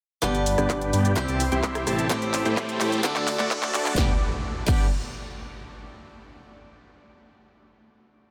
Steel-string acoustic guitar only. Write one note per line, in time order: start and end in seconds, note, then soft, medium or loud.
0.22 1.11 G2 medium
0.22 1.12 G3 medium
0.22 1.12 B3 medium
0.22 1.12 D4 medium
0.22 1.13 G4 medium
1.15 2.05 C3 medium
1.15 2.05 G3 medium
1.15 2.06 C4 medium
1.15 2.06 E4 medium
1.15 2.06 G4 medium
2.09 2.99 A2 medium
2.09 2.99 A3 medium
2.09 3.00 C4 medium
2.09 3.00 E4 medium
2.09 3.00 G4 medium
3.03 3.93 D3 medium
3.03 3.93 A3 medium
3.03 3.93 D4 medium
3.03 3.94 F#4 medium
3.03 3.94 A4 medium
3.96 4.10 G3 medium
3.96 4.11 B3 medium
3.96 4.11 D4 medium
3.96 4.12 G4 loud
4.66 4.85 G3 medium
4.66 4.85 B3 medium
4.66 4.86 D4 medium
4.66 4.87 G4 loud